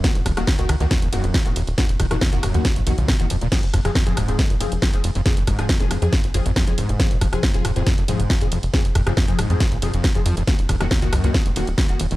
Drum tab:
CC |----------------|----------------|x---------------|----------------|
RD |x-x-x-x-x-x-x-x-|x-x-x-x-x-x-x-x-|x-x-x-x-x-x-x-x-|x-x-x-x-x-x-x-x-|
HH |xxoxxxoxxxoxxxoo|xxoxxxoxxxoxxxox|xxoxxxoxxxoxxxoo|xxoxxxoxxxoxxxox|
SD |o-rro-r-o---o---|o-rro-r-o---o---|o-rro-r-o---o---|o-rro-r-o---o---|
BD |o-o-o---o---o---|o-o-o---o---o---|o-o-o---o---o---|o-o-o---o---o---|

CC |----------------|----------------|----------------|
RD |x-x-x-x-x-x-x-x-|x-x-x-x-x-x-x-x-|x-x-x-x-x-x-x-x-|
HH |xxoxxxoxxxoxxxoo|xxoxxxoxxxoxxxox|xxoxxxoxxxoxxxoo|
SD |o-rro-r-o---o---|o-rro-r-o---o---|o-rro-r-o---o---|
BD |o-o-o---o---o---|o-o-o---o---o---|o-o-o---o---o---|